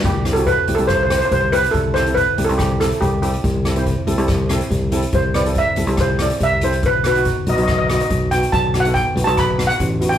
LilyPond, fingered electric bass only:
\new Staff \with { instrumentName = "Fingered electric bass" } { \clef bass \time 4/4 \key c \lydian \tempo 4 = 141 c,4. c,16 c,4~ c,16 c,4 | c,4. c,16 c,4~ c,16 c,4 | c,4. c,16 c,4~ c,16 c,4 | c,4. c,16 c,4~ c,16 c,4 |
b,,4. b,,16 b,,4~ b,,16 b,,4 | b,,4. b,,16 b,,4~ b,,16 a,,4 | }